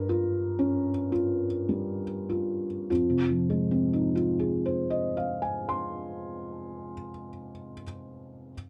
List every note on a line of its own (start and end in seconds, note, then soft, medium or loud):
0.00 2.86 G2 medium
0.00 1.12 A#4 medium
0.09 0.91 F4 soft
0.59 1.45 C#4 soft
1.12 2.03 F4 soft
1.69 2.66 G3 soft
2.29 2.89 F4 soft
2.90 6.92 F2 soft
2.90 4.14 F4 soft
3.10 7.10 C3 soft
3.29 7.30 F3 soft
3.50 7.50 G#3 soft
3.71 7.72 C4 soft
3.93 7.83 D#4 soft
4.15 7.82 F4 soft
4.39 7.82 G#4 soft
4.66 7.83 C5 soft
4.90 7.83 D#5 soft
5.17 7.83 F5 soft
5.42 7.82 G#5 soft
5.69 7.82 C6 soft